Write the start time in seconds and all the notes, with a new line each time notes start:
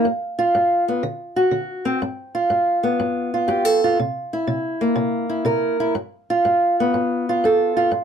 0.05 G2
0.39 F4
0.55 G2
0.88 B3
1.03 D3
1.36 F#4
1.51 D3
1.85 C4
2.02 G2
2.35 F4
2.50 G2
2.83 B3
3.00 G2
3.34 F4
3.48 G2 G4
3.65 A4
3.84 F4
3.99 C3
4.33 E4
4.47 C3
4.81 A#3
4.96 C3
5.29 E4
5.45 C3 A#4
5.80 E4
5.95 G2
6.30 F4
6.45 G2
6.80 B3
6.94 G2
7.29 F4
7.44 G2 A4
7.77 F4
7.91 G2